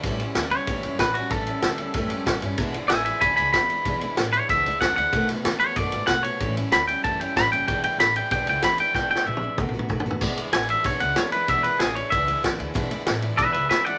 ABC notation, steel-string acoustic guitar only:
X:1
M:4/4
L:1/8
Q:1/4=189
K:Emix
V:1 name="Steel-string acoustic guitar"
[A,,E,=G,CE] [G,CE] [E,G,CE] [G,CE] [A,,E,G,CE] [G,CE] [E,CE] [G,CE] | [A,,E,=G,CE] [G,CE] [E,G,] [G,CE] [A,,E,G,CE] [G,CE] [E,G,CE] [G,CE] | [E,,B,,E,G,DE] [E,G,DE] [E,G,DE] [E,G,DE] [E,,B,,E,G,DE] [E,G,DE] [E,G,DE] [E,G,DE] | [E,,B,,E,G,DE] [E,G,DE] [E,G,DE] [E,G,DE] [E,,B,,E,G,DE] [E,G,DE] [E,G,DE] [E,G,DE] |
[B,,^D,A,B,F] [A,B,F] [D,A,B,F] [A,B,F] [B,,D,A,B,F] [A,B,F] [D,A,B,F] [A,B,F] | [A,,E,=G,CE] [G,CE] [G,CE] [G,CE] [A,,E,G,CE] [G,CE] [E,G,E] [G,CE] | [E,,B,,E,G,DE] [E,G,DE] [G,D] [E,G,DE] [E,,B,,E,G,DE] [E,G,DE] [E,G,DE] [E,G,DE] | [E,,B,,E,G,DE] [E,G,DE] [E,G,DE] [E,G,DE] [B,,^D,A,B,F] [A,B,F] [D,A,B,F] [A,B,F] |
[E,,B,,E,G,DE] [E,G,DE] [E,G,DE] [E,G,DE] [E,,B,,E,G,DE] [E,G,DE] [E,G,DE] [E,G,DE] | [E,,B,,E,G,DE] [E,G,DE] [E,G,D] [E,G,DE] [E,,B,,E,G,DE] [E,G,DE] [E,G,DE] [E,G,DE] | [E,,B,,E,G,DE] [E,G,DE] [E,G,E] [E,G,DE] [E,,B,,E,G,DE] [E,G,DE] [E,G,DE] [E,G,DE] |]